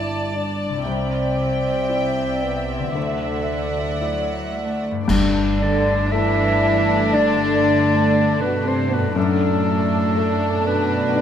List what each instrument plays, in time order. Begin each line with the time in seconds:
Already playing: double bass section G1, grand piano G2 D4 D5, cello section G2, harp A3, french horn E4, violin section D5 A5, viola section D5
0.35 french horn D4
0.69 harp C3
0.73 harp G3
0.77 harp E4
0.82 grand piano C2, double bass section C2, harp D5, violin section E5
0.86 cello section C3, french horn C4, violin section G5
1.89 grand piano E4 D5
2.43 french horn B3
2.78 harp D3
2.83 harp F#3
2.87 harp E4
2.92 grand piano D2, double bass section D2, harp D5, viola section D5
2.96 cello section D3, french horn A3, violin section F#5
4.01 cello section F#3, grand piano E4 D5
4.56 cello section A3
4.91 harp G2
4.96 harp A3
5.01 harp D4
5.05 grand piano G2, double bass section G2, viola section A3, violin section D4, harp D5
5.09 concert bass drum, crash
5.60 cello section D3, french horn section D4, clarinet D5
6.11 cello section E3, grand piano A3, french horn section E4, clarinet E5
7.12 cello section D3, french horn section D4, grand piano D4 D5, clarinet D5
8.40 cello section B2, french horn section B3, clarinet B4
8.65 cello section C3, french horn section C4, clarinet C5
8.90 cello section B2, french horn section B3, clarinet B4
8.99 harp F#2
9.03 harp A3
9.07 harp D4
9.12 double bass section F#2, cello section A2, violin section D4, harp D5
9.16 grand piano F#2, french horn section A3, viola section A3, violin section D4, clarinet A4
10.16 grand piano A3
10.65 cello section B2, french horn section B3, clarinet B4
11.16 grand piano D4 D5